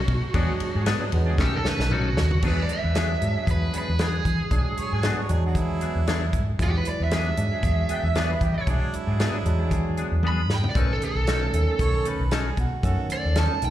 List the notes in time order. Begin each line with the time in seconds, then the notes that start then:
Already playing: F#4
0.08 B2, kick, ride
0.33 E2 F#3 G#3 B3 D4 F#4 G#4, kick, ride
0.60 muted fingered electric bass stroke, ride
0.74 G#2 D4 F#4 G#4
0.86 F#3 B3 D4 G#4, snare, ride
1.01 F#3 G#3 D4
1.12 E2 F#3 G#3 B3, ride
1.26 D4 F#4 G#4
1.38 B1 D#3 F#3 A3 C#4 D#4 G4 A4, kick, snare
1.56 A4
1.65 C#4 D#4 A4 B4, snare
1.79 B1, snare
1.91 F#3 C#4 D#4 F#4 A4, mid tom
2.17 D#2, snare
2.31 floor tom
2.42 E2 F#3 G#3 B3 D4 F#4 G#4, kick, crash
2.48 B4
2.62 D5
2.69 closed hi-hat
2.73 E5
2.83 E2 D4 F#4 B4
2.95 F#3 B3 D4 G#4, snare, closed hi-hat
3.09 F#3 G#3 D4
3.21 G#2 F#3 G#3 D4, closed hi-hat
3.35 D4 F#4 G#4
3.47 E2 B4, kick, closed hi-hat
3.73 B3 D4 G#4, closed hi-hat
3.78 B4
3.88 E2
3.99 F#3 B3 D4 G#4, snare, closed hi-hat
4.04 G#4
4.25 E3, kick, closed hi-hat
4.51 B1 F#3 G#3 D4 F#4 G#4, kick, closed hi-hat
4.77 C#5, muted fingered electric bass stroke, closed hi-hat
4.92 G#2 D4 F#4 G#4
5.03 F#3 B3 D4 F#4 G#4, snare, closed hi-hat
5.17 F#3 G#3 D4 C#5
5.29 E2 F#3 G#3 D4 G#4, closed hi-hat
5.45 D4 F#4 G#4
5.55 E3 E4, kick, closed hi-hat
5.81 B3 D4 G#4, closed hi-hat
5.95 E2
6.07 F#3 B3 D4 G#4, snare, closed hi-hat
6.33 G#2, kick, closed hi-hat
6.59 E2 F#3 G#3 D4 E4 F#4 G#4, kick, closed hi-hat
6.64 G4
6.78 B4
6.85 D5, closed hi-hat
7.00 E2 D4 F#4 B4 E5
7.11 F#3 B3 D4 G#4, snare, closed hi-hat
7.16 E5
7.25 F#3 G#3 D4
7.37 G#2 F#3 G#3 D4, closed hi-hat
7.52 D4 F#4 G#4
7.63 E2, kick, closed hi-hat
7.89 B3 D4 G#4 G5, closed hi-hat
8.03 E2 E5
8.15 F#3 B3 D4 G#4 D5, snare, closed hi-hat
8.32 B4
8.41 E3 G4, kick, closed hi-hat
8.58 E4
8.67 B1 F#3 G#3 D4 F#4 G#4, kick, closed hi-hat
8.93 E4, muted fingered electric bass stroke, closed hi-hat
9.06 G#2 D4 F#4 G#4
9.19 F#3 B3 D4 G#4, snare, closed hi-hat
9.34 F#3 G#3 D4
9.45 E2 F#3 G#3 D4, closed hi-hat
9.58 D4 F#4 G#4
9.71 E3, kick, closed hi-hat
9.97 B3 D4 G#4, closed hi-hat
10.12 E2
10.23 F#3 B3 D4 G#4, high tom
10.28 B5
10.49 G#2, snare
10.55 G5
10.64 floor tom
10.69 D5
10.75 B1 D#3 F#3 A3 C#4 D#4 A4, kick, closed hi-hat
10.79 B4
10.92 A4
11.02 A4, closed hi-hat
11.15 B1 C#4 D#4 A4
11.27 F#3 C#4 D#4 A4, snare, closed hi-hat
11.42 D#3 A3 C#4
11.53 D#2 D#3 A3 C#4, closed hi-hat
11.68 C#4 D#4 A4
11.79 B1 C#5, kick, closed hi-hat
12.05 C#4 D#4 A4 B4, closed hi-hat
12.20 B1
12.31 F#3 C#4 D#4 G#4 A4, snare, closed hi-hat
12.57 B2 F#4, kick, closed hi-hat
12.83 F#2 D#3 A3 C#4 D#4 F#4 A4, kick, closed hi-hat
13.10 D5, muted fingered electric bass stroke, closed hi-hat
13.24 D#2 C#4 D#4 A4
13.35 F#3 C#4 D#4 A4 A5, snare, closed hi-hat
13.51 D#3 A3 C#4
13.62 B1 D#3 A3 D#4 G5, closed hi-hat